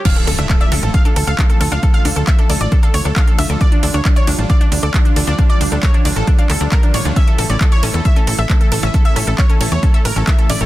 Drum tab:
CC |x---------------|----------------|----------------|----------------|
RD |--x---x---x---x-|--x---x---x---x-|--x---x---x---x-|--x---x---x---x-|
HH |xxoxxxoxxxoxxxox|xxoxxxoxxxoxxxox|xxoxxxoxxxoxxxox|xxoxxxoxxxoxxxox|
CP |----x-------x---|----x-------x---|----x-------x---|----x-----x-x---|
BD |o---o---o---o---|o---o---o---o---|o---o---o---o---|o---o---o---o---|

CC |----------------|----------------|
RD |--x---x---x---x-|--x---x---x---x-|
HH |xxoxxxoxxxoxxxox|xxo-xxoxxxoxxxox|
CP |----x-------x---|----x-------x---|
BD |o---o---o---o---|o---o---o---o---|